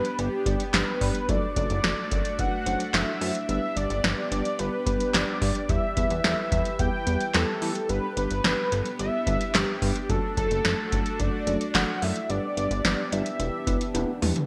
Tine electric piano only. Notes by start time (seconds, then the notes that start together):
0.19 G3 B3 D4 G4 B4
0.46 G3 B3 D4 G4 D5
0.74 G3 B3 D4 G4 B4
1.01 G3 B3 D4 G4 D5
1.29 F#3 A3 D4 F#4 A4
1.56 F#3 A3 D4 F#4 A4
1.84 F#3 A3 D4 F#4 A4
2.11 F#3 A3 D4 F#4 A4
2.39 F#3 A3 D4 F#4 B4
2.66 F#3 A3 D4 F#4 C5
2.94 F#3 A3 D4 F#4 A4
3.21 F#3 A3 D4 F#4 C5
3.49 G3 B3 D4 G4 B4
3.76 G3 B3 D4 G4 D5
4.04 G3 B3 D4 G4 B4
4.32 G3 B3 D4 G4 B4
4.59 G3 B3 D4 G4 B4
4.87 G3 B3 D4 G4 B4
5.14 G3 B3 D4 G4 B4
5.42 G3 B3 D4 G4 B4
5.69 G3 B3 E4 G4 B4
5.97 G3 B3 E4 G4 B4
6.24 G3 B3 E4 G4 A4
6.52 G3 B3 E4 G4 B4
6.79 G3 B3 E4 G4 B4
7.07 G3 B3 E4 G4 B4
7.34 G3 B3 E4 G4 B4
7.62 G3 B3 E4 G4 B4
7.89 G3 B3 D4 G4 B4
8.17 G3 B3 D4 G4 B4
8.44 G3 B3 D4 G4 B4
8.72 G3 B3 D4 G4 A4
8.99 G3 B3 D4 G4 B4
9.27 G3 B3 D4 G4 B4
9.54 G3 B3 D4 G4 B4
9.82 G3 B3 D4 G4 B4
10.10 F#3 A3 D4 F#4 A4
10.37 F#3 A3 D4 F#4 A4
10.65 F#3 A3 D4 F#4 A4
10.92 F#3 A3 D4 F#4 A4
11.20 F#3 A3 D4 F#4 A4
11.47 F#3 A3 D4 F#4 A4
11.74 F#3 A3 D4 F#4 A4
12.02 F#3 A3 D4 F#4 A4
12.30 G3 B3 D4 G4 B4
12.57 G3 B3 D4 G4 B4
12.85 G3 B3 D4 G4 B4
13.12 G3 B3 D4 G4 B4
13.40 B3 D4 E4 G4 B4
13.67 B3 D4 E4 G4 B4
13.94 B3 D4 E4 G4 B4
14.22 B3 D4 E4 G4 B4